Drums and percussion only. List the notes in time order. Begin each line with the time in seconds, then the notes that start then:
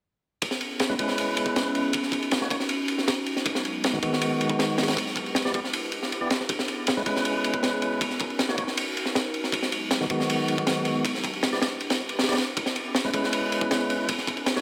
0.42 kick, ride
0.51 snare
0.61 ride
0.79 snare, ride
0.90 snare
0.99 kick, ride
1.08 snare
1.18 ride
1.37 ride
1.46 kick
1.56 snare, ride
1.75 ride
1.93 kick, ride
2.03 snare
2.12 kick, ride
2.22 ride
2.31 snare, ride
2.41 snare
2.50 kick, ride
2.60 snare
2.69 ride
2.88 ride
2.98 snare
3.08 snare, ride
3.26 ride
3.36 snare
3.46 kick, ride
3.55 snare
3.65 ride
3.84 snare, ride
3.93 snare
4.02 kick, ride
4.13 snare
4.21 ride
4.41 ride
4.50 kick
4.59 snare, ride
4.78 snare, ride
4.83 snare, ride
4.88 snare, ride
4.97 kick, ride
5.07 snare
5.16 kick, ride
5.26 ride
5.35 snare, ride
5.45 snare
5.54 kick, ride
5.64 snare
5.73 ride
5.92 ride
6.03 snare
6.12 ride
6.30 snare, ride
6.40 snare
6.49 kick, ride
6.59 snare
6.68 ride
6.87 snare, ride
6.97 snare
7.06 kick, ride
7.16 snare
7.25 ride
7.44 ride
7.54 kick
7.63 snare, ride
7.82 ride
8.01 kick, ride
8.10 snare
8.19 kick, ride
8.30 ride
8.39 snare, ride
8.48 snare
8.58 kick, ride
8.67 snare
8.77 ride
8.97 ride
9.05 snare
9.15 snare, ride
9.34 ride
9.44 snare
9.52 kick, ride
9.62 snare
9.72 ride
9.91 snare, ride
10.01 snare
10.10 kick, ride
10.20 snare
10.30 ride
10.48 ride
10.58 kick
10.67 snare, ride
10.85 ride
11.05 kick, ride
11.15 snare
11.24 kick, ride
11.33 ride
11.43 snare, ride
11.53 snare
11.62 snare, ride
11.80 ride
11.90 snare, ride
12.09 ride
12.19 snare, ride
12.23 snare, ride
12.28 snare, ride
12.33 snare, ride
12.38 snare, ride
12.57 kick, ride
12.66 snare
12.76 ride
12.95 snare, ride
13.05 snare
13.14 kick, ride
13.24 snare
13.33 ride
13.52 ride
13.61 kick
13.71 snare, ride
13.90 ride
14.09 kick, ride
14.18 snare
14.27 kick, ride
14.37 ride
14.46 snare, ride
14.56 snare